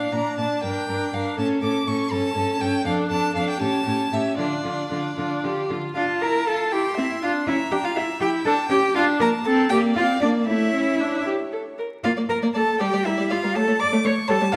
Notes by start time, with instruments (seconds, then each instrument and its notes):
Already playing: viola D4, violin D5 F5
0.12 cello A#2, viola D4, violin D5 A#5
0.38 cello A#2, viola D4, violin D5 A5
0.63 cello G2, viola D4, violin A#4 G5
0.88 cello G2, viola D4, violin A#4
1.13 cello G2, viola D4, violin A#4 F5
1.38 cello A2, viola C#4, violin A4 A5
1.62 cello A2, viola C#4, violin A4 D6
1.87 cello A2, viola C#4, violin A4 C#6
2.11 cello G2, viola C#4, violin A4 A5
2.35 cello G2, viola C#4, violin A4
2.60 cello G2, viola C#4, violin A4 G5
2.85 cello F2, viola D4, violin A4 F5
3.09 cello F2, viola D4, violin A4 A5
3.34 cello F2, viola D4, violin A4 F5
3.50 violin G5
3.60 cello A2, viola C#4, violin G4 A5
3.85 cello A2, viola C#4, violin G4
4.11 cello A2, viola C#4, violin G4 E5
4.37 cello D3, viola D4, violin F4 D5
4.63 cello D3, viola D4, violin F4
4.90 cello D3, viola D4, violin F4
5.16 cello D3, viola D4, violin F4
5.42 cello D3, violin F4, viola G4
5.69 cello D3, violin F4, viola F4
5.94 viola D4, cello F4, violin F5 A5
6.21 viola E4, cello A#4, violin A#5
6.47 viola F4, cello A4, violin A5
6.72 viola E4, cello G4, violin G5 C6
6.97 viola C4, cello E4, violin E5
7.22 viola D4, cello F4, violin F5
7.46 viola C#4, cello E4, violin E5 A#5
7.71 viola D4, cello G4, violin G5
7.84 cello F4, violin F5
7.95 cello E4, viola F4, violin E5
8.20 viola E4, cello G4, violin G5
8.45 viola D4, cello A4, violin A5
8.69 viola C#4, cello G4, violin G5
8.95 viola D4, cello F4, violin F5 A5
9.20 viola A#3, cello A#4, violin A#5
9.45 viola C4, cello A4, violin A5
9.69 viola A#3, cello G4, violin D5 G5
9.95 viola C4, cello F4, violin F5
10.21 viola A#3, cello D4, violin D5
10.46 viola A3, cello E4, violin C#5 E5
10.73 viola C#4
11.00 viola D4
11.26 viola G4
11.52 viola A4
11.78 viola A#4
12.04 viola A#3, cello F4, violin D5 F5
12.17 viola A#3, violin D5
12.29 cello A#4, violin A#5
12.42 viola A#3, violin D5
12.54 viola A#3, cello A4, violin D5 A5
12.80 viola G3, cello G4, violin D5 G5
12.93 viola G3, violin D5
13.05 viola G3, cello E4, violin A#4 E5
13.17 viola G3, violin D5
13.30 viola G3, cello F4, violin D5 F5
13.42 viola G3, violin A#4
13.55 viola A3, cello A4, violin C#5 A5
13.67 viola A3, violin C#5
13.80 cello D5, violin D6
13.91 viola A3, violin C#5
14.03 viola A3, violin C#5 C#6, cello C#5
14.28 viola G3, cello A4, violin C#5 A5
14.41 viola G3, violin C#5
14.52 violin A4 F5